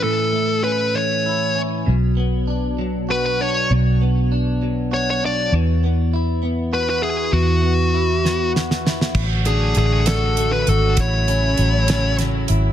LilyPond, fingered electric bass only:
\new Staff \with { instrumentName = "Fingered electric bass" } { \clef bass \time 6/8 \key d \lydian \tempo 4. = 66 r2. | b,,2. | b,,2. | e,2. |
e,2. | a,,4 a,,4. gis,,8 | a,,4 a,,4. gis,,8 | }